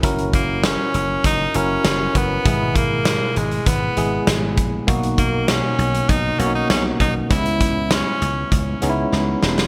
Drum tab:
HH |xxx-x-x-x-x-x-x-|x-x-x-xxx-x-x-x-|xxx-x-xxx-x-x-x-|xxx-x-x-x-x-----|
SD |----o-------o---|----o-------o---|----o-------o---|----o-------o-oo|
BD |o-o-----o-----o-|o-o-----o-----o-|o-o-----o-----o-|o-o-----o-------|